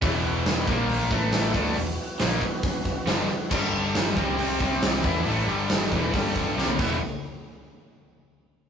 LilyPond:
<<
  \new Staff \with { instrumentName = "Tonewheel organ" } { \time 4/4 \key e \minor \tempo 4 = 138 <e' b' fis''>4. <ais eis' c''>4 <a e' b'>4 <e b fis'>8~ | <e b fis'>1 | <g d' a'>4. <c' g' d''>2 <g d' a'>8~ | <g d' a'>2. <c' g' d''>8 <e' b' fis''>8 |
r1 | }
  \new Staff \with { instrumentName = "Distorted electric guitar" } { \clef bass \time 4/4 \key e \minor <e, b, e>4. <ais, eis ais>4 <a, e a>4 <d a d'>8 | <e, b,>8 r8 <ais, f ais>8 r4. <g, d g>8 r8 | <g, d g>4. <c g c'>4 <c g c'>4 <e b e'>8 | <a, e a>8 <g, d g>4 <e, b, e>8 <g, d g>4 <c g c'>8 <e, b, e>8 |
r1 | }
  \new Staff \with { instrumentName = "Distorted electric guitar" } { \clef bass \time 4/4 \key e \minor <e, b, e>4. <ais, eis ais>4 <a, e a>4 <d a d'>8 | <e, b,>8 r8 <ais, f ais>8 r4. <g, d g>8 r8 | <g, d g>4. <c g c'>4 <c g c'>4 <e b e'>8 | <a, e a>8 <g, d g>4 <e, b, e>8 <g, d g>4 <c g c'>8 <e, b, e>8 |
r1 | }
  \new Staff \with { instrumentName = "Overdriven electric guitar" } { \clef bass \time 4/4 \key e \minor <e, b, e>4. <ais, eis ais>4 <a, e a>4 <d a d'>8 | <e, b,>8 r8 <ais, f ais>8 r4. <g, d g>8 r8 | <g, d g>4. <c g c'>4 <c g c'>4 <e b e'>8 | <a, e a>8 <g, d g>4 <e, b, e>8 <g, d g>4 <c g c'>8 <e g b e'>8 |
r1 | }
  \new Staff \with { instrumentName = "Picked electric bass" } { \clef bass \time 4/4 \key e \minor e,,4. ais,,4 a,,4 d,8 | e,,8 r8 ais,,8 r4. g,,8 r8 | g,,4. c,4 c,4 e,8 | a,,8 g,,4 e,,8 g,,4 c,8 e,,8 |
r1 | }
  \new DrumStaff \with { instrumentName = "Drums" } \drummode { \time 4/4 <hho bd>4 <hho sn>8 bd8 hho8 bd8 <hho sn>8 bd8 | hho4 <hho sn>8 bd8 <hho bd>8 bd8 <hho sn>4 | <cymc bd>4 <hho sn>8 bd8 hho8 bd8 <hho sn>8 bd8 | hho4 <hho sn>8 bd8 <hho bd>8 bd8 sn16 tommh16 <cymc bd>8 |
r4 r4 r4 r4 | }
>>